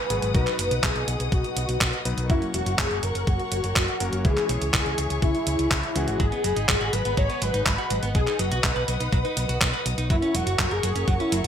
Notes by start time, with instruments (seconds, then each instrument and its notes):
Already playing: analog synth lead B4, string section B4 F#5 G#5 D#6
0.10 fingered electric bass G#1, electric grand piano B2 F#3 G#3 B3 G#4, closed hi-hat
0.22 fingered electric bass G#1, closed hi-hat
0.35 fingered electric bass B1, electric grand piano B2 F#3 B3 D#4 F#4, analog synth lead B4, string section D#5, kick, closed hi-hat
0.47 clap, closed hi-hat
0.59 fingered electric bass F#1, closed hi-hat
0.71 fingered electric bass B1, closed hi-hat
0.83 fingered electric bass B1, analog synth lead G#4, kick, clap, closed hi-hat
0.95 fingered electric bass B1, closed hi-hat
1.08 fingered electric bass B1, closed hi-hat
1.20 fingered electric bass B1, closed hi-hat
1.32 fingered electric bass B1, analog synth lead F#4, kick, closed hi-hat
1.44 closed hi-hat
1.56 fingered electric bass B1, closed hi-hat
1.69 fingered electric bass B1, closed hi-hat
1.81 fingered electric bass B1, kick, clap, closed hi-hat
1.93 closed hi-hat
2.05 fingered electric bass B1, electric grand piano F#3 B3 D#4 B4, closed hi-hat
2.17 fingered electric bass B1, closed hi-hat
2.30 fingered electric bass F#1, electric grand piano F#3 A#3 C#4 F#4, analog synth lead E4, string section A#4 C#5 F#5 C#6, kick, closed hi-hat
2.42 closed hi-hat
2.54 fingered electric bass E1, analog synth lead F#4, closed hi-hat
2.66 fingered electric bass F#1, closed hi-hat
2.78 fingered electric bass F#1, analog synth lead G#4, kick, clap, closed hi-hat
2.91 fingered electric bass F#1, closed hi-hat
3.03 fingered electric bass F#1, analog synth lead A#4, closed hi-hat
3.15 fingered electric bass F#1, closed hi-hat
3.27 fingered electric bass F#1, analog synth lead F#4, kick, closed hi-hat
3.39 closed hi-hat
3.52 fingered electric bass F#1, closed hi-hat
3.64 fingered electric bass F#1, closed hi-hat
3.76 fingered electric bass F#1, kick, clap, closed hi-hat
3.88 closed hi-hat
4.00 fingered electric bass F#1, electric grand piano F#3 A#3 C#4 A#4, closed hi-hat
4.13 fingered electric bass F#1, closed hi-hat
4.25 fingered electric bass C#2, electric grand piano E3 G#3 C#4 E4, string section G#4 E5 C#6, analog synth lead G#4, kick, closed hi-hat
4.37 clap, closed hi-hat
4.49 fingered electric bass B1, closed hi-hat
4.61 fingered electric bass C#2, closed hi-hat
4.74 fingered electric bass C#2, analog synth lead G#4, kick, clap, closed hi-hat
4.86 fingered electric bass C#2, closed hi-hat
4.98 fingered electric bass C#2, closed hi-hat
5.10 fingered electric bass C#2, closed hi-hat
5.22 fingered electric bass C#2, analog synth lead E4, kick, closed hi-hat
5.35 closed hi-hat
5.47 fingered electric bass C#2, closed hi-hat
5.59 fingered electric bass C#2, closed hi-hat
5.71 fingered electric bass C#2, kick, clap, closed hi-hat
5.83 closed hi-hat
5.95 fingered electric bass C#2, electric grand piano E3 G#3 C#4 E4, analog synth lead F#4, closed hi-hat
6.08 fingered electric bass G#1, closed hi-hat
6.20 fingered electric bass G#1, clean electric guitar F#3, analog synth lead G#4, string section D#5 F#5 B5, kick, closed hi-hat
6.32 clean electric guitar B3, closed hi-hat
6.44 fingered electric bass F#1, clean electric guitar F#3, closed hi-hat
6.56 fingered electric bass G#1, clean electric guitar D#4, closed hi-hat
6.69 fingered electric bass G#1, clean electric guitar F#3, kick, clap, closed hi-hat
6.81 fingered electric bass G#1, clean electric guitar F#4, closed hi-hat
6.93 fingered electric bass G#1, clean electric guitar F#3, analog synth lead B4, closed hi-hat
7.05 fingered electric bass G#1, clean electric guitar B3, closed hi-hat
7.17 fingered electric bass G#1, clean electric guitar F#3, analog synth lead C#5, kick, closed hi-hat
7.30 clean electric guitar B3, closed hi-hat
7.42 fingered electric bass G#1, clean electric guitar F#3, analog synth lead B4, closed hi-hat
7.54 fingered electric bass G#1, clean electric guitar D#4, closed hi-hat
7.66 fingered electric bass G#1, clean electric guitar F#3, analog synth lead B4, kick, clap, closed hi-hat
7.78 clean electric guitar F#4, closed hi-hat
7.90 fingered electric bass G#1, clean electric guitar F#3, closed hi-hat
8.03 fingered electric bass G#1, clean electric guitar B3, closed hi-hat
8.15 fingered electric bass B1, clean electric guitar F#3, analog synth lead G#4, string section B4 D#6, kick, closed hi-hat
8.27 clean electric guitar D#4, clap, closed hi-hat
8.39 fingered electric bass F#1, clean electric guitar F#3, analog synth lead F#4, closed hi-hat
8.51 fingered electric bass B1, clean electric guitar F#4, closed hi-hat
8.64 fingered electric bass B1, clean electric guitar F#3, analog synth lead B4, kick, clap, closed hi-hat
8.76 fingered electric bass B1, clean electric guitar B4, closed hi-hat
8.88 fingered electric bass B1, clean electric guitar F#3, closed hi-hat
9.00 fingered electric bass B1, clean electric guitar D#4, closed hi-hat
9.12 fingered electric bass B1, clean electric guitar F#3, kick, closed hi-hat
9.25 clean electric guitar D#4, closed hi-hat
9.37 fingered electric bass B1, clean electric guitar F#3, closed hi-hat
9.49 fingered electric bass B1, clean electric guitar F#4, closed hi-hat
9.61 fingered electric bass B1, clean electric guitar F#3, kick, clap, closed hi-hat
9.73 clean electric guitar B4, closed hi-hat
9.86 fingered electric bass B1, clean electric guitar F#3, closed hi-hat
9.98 fingered electric bass B1, clean electric guitar D#4, closed hi-hat
10.10 fingered electric bass F#1, clean electric guitar F#3, analog synth lead E4, string section A#4 C#5 C#6, kick, closed hi-hat
10.22 clean electric guitar C#4, closed hi-hat
10.34 fingered electric bass E1, clean electric guitar F#3, analog synth lead F#4, closed hi-hat
10.47 fingered electric bass F#1, clean electric guitar F#4, closed hi-hat
10.59 fingered electric bass F#1, clean electric guitar F#3, kick, clap, closed hi-hat
10.71 fingered electric bass F#1, analog synth lead G#4, clean electric guitar A#4, closed hi-hat
10.83 fingered electric bass F#1, clean electric guitar F#3, closed hi-hat
10.95 fingered electric bass F#1, clean electric guitar C#4, closed hi-hat
11.08 fingered electric bass F#1, clean electric guitar F#3, analog synth lead F#4, kick, closed hi-hat
11.20 clean electric guitar C#4, analog synth lead E4, closed hi-hat
11.32 fingered electric bass F#1, clean electric guitar F#3, closed hi-hat